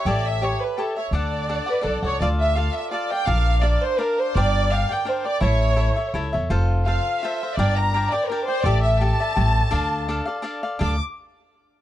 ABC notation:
X:1
M:3/4
L:1/8
Q:"Swing" 1/4=168
K:D
V:1 name="Violin section"
d e c B A c | d3 B A c | [K:Dm] d e f e d g | f2 d c B c |
d2 f g c d | ^c4 z2 | z2 f2 e2 | d b2 d B c |
d e a4- | a4 z2 | d' z4 z |]
V:2 name="Cavaquinho"
[GAce]2 [GAce]2 [GAce] [Ace] | [DAdf]2 [DAdf] [Adf] [DAdf] [Adf] | [K:Dm] [FAdf]2 [FAdf]2 [FAdf] [Adf] | [DBdf]2 [DBdf]2 [DBdf]2 |
[DBdg]2 [DBdg] [Bdg] [DBdg] [Bdg] | [EA^ce]2 [EAce] [Ace] [EAce] [Ace] | [FAcf]2 [FAcf]2 [FAcf] [Acf] | [DBdg]2 [DBdg] [Bdg] [DBdg] [Bdg] |
[GAde]2 [GAde] [Ade] [GA^ce]2 | [DAdf]2 [DAdf] [Adf] [DAdf] [Adf] | [DAdf] z4 z |]
V:3 name="Upright bass" clef=bass
A,,,4 z2 | D,,4 B,,, C,, | [K:Dm] D,,4 z2 | B,,,4 z2 |
G,,,4 z2 | A,,,4 ^C,, E,, | F,,,4 z2 | G,,,4 z2 |
A,,,4 A,,,2 | D,,4 z2 | D,, z4 z |]